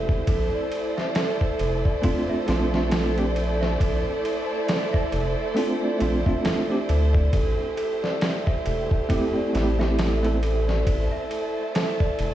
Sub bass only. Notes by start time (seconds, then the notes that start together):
Already playing: E1
0.28 A#1
1.60 F1
2.48 A#1
3.81 A#1
5.13 F1
6.01 A#1
6.89 D2
7.33 A1
8.66 E1
9.55 A1
10.87 A1
12.19 E1